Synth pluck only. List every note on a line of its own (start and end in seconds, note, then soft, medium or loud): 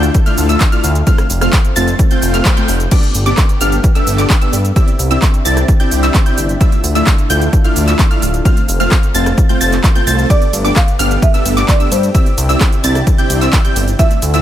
0.26 0.46 F6 medium
0.49 0.62 E6 loud
0.72 0.85 F6 medium
1.07 1.20 F6 medium
1.41 1.54 F6 loud
1.76 1.89 A6 loud
2.11 2.31 G6 medium
2.34 2.47 F6 loud
2.57 2.70 G6 medium
2.92 3.04 D6 medium
3.26 3.39 D6 loud
3.61 3.73 F6 loud
3.95 4.16 E6 medium
4.18 4.31 D6 medium
4.41 4.54 E6 medium
4.76 4.89 E6 medium
5.11 5.24 E6 loud
5.45 5.58 A6 loud
5.80 6.00 G6 medium
6.03 6.16 E6 loud
6.26 6.39 G6 medium
6.61 6.74 E6 medium
6.95 7.08 E6 loud
7.30 7.43 G6 loud
7.64 7.85 F6 medium
7.88 8.00 E6 medium
8.11 8.24 F6 medium
8.45 8.58 F6 medium
8.80 8.93 F6 loud
9.15 9.27 A6 loud
9.49 9.58 G6 medium
9.61 9.74 A6 loud
9.95 10.04 G6 loud
10.07 10.27 A6 loud
10.30 10.43 D6 medium
10.65 10.77 D6 loud
10.99 11.12 F6 loud
11.34 11.54 E6 medium
11.57 11.70 D6 loud
11.80 11.93 E6 medium
12.14 12.27 E6 medium
12.49 12.62 E6 loud
12.84 12.97 A6 loud
13.18 13.39 G6 medium
13.41 13.54 E6 loud
13.65 13.77 G6 medium
13.99 14.12 E6 medium
14.34 14.42 E6 loud